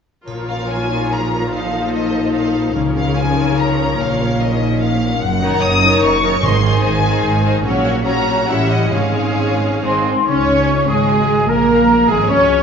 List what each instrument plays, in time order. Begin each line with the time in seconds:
0.27 double bass section A#1, harp A#2, cello section A#2, viola section F3 F4, violin section A#4 C#5, triangle
0.49 harp C#4, violin section F5
0.70 harp D#4, violin section G#5
0.91 harp C#4
1.11 harp A#4, violin section A#5
1.32 harp C#4
1.52 harp A#2, viola section D#4, violin section A4 C5 F5
1.73 harp D#4
1.94 harp F4, violin section D#5
2.14 harp D#4
2.35 harp A4, violin section F5
2.55 harp D#4
2.76 double bass section C#2, timpani C#3, harp C#3, cello section C#3, viola section F3 C#4, violin section A#4 C#5
2.97 harp C#4, violin section F5
3.17 harp D#4, violin section G#5
3.38 harp C#4
3.58 harp A#4, violin section A#5
3.79 harp C#4
4.00 double bass section A#1, harp A#2, cello section A#2, violin section F5
4.20 harp C#4
4.41 harp D#4, violin section D#5
4.61 harp C#4
4.82 harp A#4, violin section F5
5.02 harp C#4
5.21 double bass section F#1, harp F#2, cello section F#2, violin section F#5
5.42 viola section D#3 D#4, harp C#4, violin section A#4 C#5
5.62 double bass section F#1, cello section F#2, harp D#4, violin section D#6
5.82 viola section D#3 D#4, harp C#4, violin section A#4 C#5
6.02 double bass section F#1, cello section F#2, harp A#4, violin section C#6
6.22 viola section D#3 D#4, harp C#4, violin section A#4 C#5
6.43 double bass section G#1, timpani G#2, harp G#2, cello section G#2, viola section D#3 D#4, violin section G#4 C5 C6
6.63 viola section D#3 D#4, harp C4, violin section G#4 C5
6.83 double bass section G#1, cello section G#2, harp C#4, violin section G#5
7.03 viola section D#3 D#4, harp C4, violin section G#4 C5
7.23 double bass section G#1, cello section G#2, harp G#4
7.43 viola section D#3 D#4, harp C4, violin section G#4 C5
7.63 double bass section A#1, harp A#2, cello section A#2, viola section F#3 C#4, violin section F#4 C#5
7.84 harp A#3, violin section F#5
8.05 viola section F#3 C#4, harp C4, violin section F#4 C#5 A#5
8.26 harp A#3
8.48 double bass section A1, harp A2, cello section A2, viola section G3 C#4, violin section E4 E5 F#5
8.70 harp C#4 E4, violin section D#5
8.92 double bass section G#1, timpani G#2, cello section G#2, harp G#2, viola section G#3 C#4, violin section G#4 C#5 F5
9.15 harp G#3
9.38 harp A#3
9.61 harp G#3
9.83 double bass section G#1, harp G#2, cello section G#2 C4, viola section G#3 D#4, violin section G#4 C5, flute section C6
10.06 harp C4 D#4
10.27 double bass section C#2, harp C#3, viola section C#4, french horn section C#4, cello section C#4, oboe C#5, violin section C#5, clarinet C#5, flute section C#6
10.48 harp G#3
10.68 harp F4
10.88 double bass section G#1, french horn section G#3, viola section G#3, cello section G#3, oboe G#4, harp G#4, violin section G#4, clarinet G#4, flute section G#5
11.09 harp F#4
11.29 harp G#4
11.48 double bass section A#1, harp F3, viola section A#3, cello section A#3, french horn section A#3, violin section A#4, oboe A#4, clarinet A#4, flute section A#5
11.69 harp G#3
11.89 harp F4
12.08 double bass section G#1, viola section G#3, cello section G#3, french horn section G#3, violin section G#4, harp G#4, oboe G#4, clarinet G#4, flute section G#5
12.28 double bass section C#2, viola section C#4, french horn section C#4, cello section C#4, harp F#4, violin section C#5, oboe C#5, clarinet C#5, flute section C#6
12.49 harp G#4